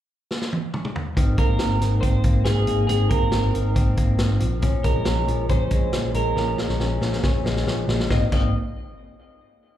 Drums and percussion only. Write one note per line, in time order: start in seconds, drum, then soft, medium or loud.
0.31 snare medium
0.41 snare medium
0.53 high tom medium
0.74 mid tom medium
0.85 mid tom medium
0.96 floor tom medium
1.17 kick medium
1.17 closed hi-hat medium
1.38 kick medium
1.38 closed hi-hat medium
1.59 snare medium
1.59 closed hi-hat medium
1.81 snare soft
1.81 closed hi-hat medium
2.03 kick medium
2.03 closed hi-hat medium
2.24 kick medium
2.24 closed hi-hat medium
2.45 snare medium
2.45 closed hi-hat medium
2.67 closed hi-hat medium
2.89 closed hi-hat medium
3.10 kick medium
3.10 closed hi-hat medium
3.32 snare medium
3.32 closed hi-hat medium
3.55 closed hi-hat medium
3.76 kick medium
3.76 closed hi-hat medium
3.97 kick medium
3.97 closed hi-hat medium
4.19 snare medium
4.19 closed hi-hat medium
4.40 closed hi-hat medium
4.62 kick loud
4.62 closed hi-hat medium
4.84 kick medium
4.84 closed hi-hat medium
5.05 snare medium
5.05 closed hi-hat medium
5.28 closed hi-hat medium
5.49 kick medium
5.49 closed hi-hat medium
5.71 kick medium
5.71 closed hi-hat medium
5.93 snare medium
5.93 closed hi-hat medium
6.14 closed hi-hat medium
6.37 snare soft
6.58 snare medium
6.69 snare soft
6.80 snare medium
7.01 snare medium
7.13 snare medium
7.23 kick medium
7.23 snare medium
7.46 snare medium
7.56 snare medium
7.67 snare medium
7.89 snare loud
8.00 snare medium
8.10 kick loud
8.10 snare medium
8.32 kick loud
8.32 crash medium